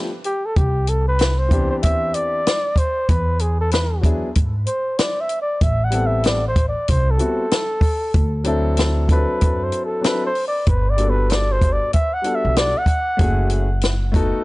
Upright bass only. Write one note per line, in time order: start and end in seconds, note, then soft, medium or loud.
0.57 1.66 C2 loud
1.84 2.12 E2 medium
3.09 4.19 E2 loud
4.36 4.64 G#2 medium
5.62 6.72 A1 loud
6.89 7.17 C2 loud
8.15 9.24 D2 loud
9.42 9.70 F#2 medium
10.67 11.77 G1 loud
12.45 12.73 B1 medium
13.20 14.30 F#1 loud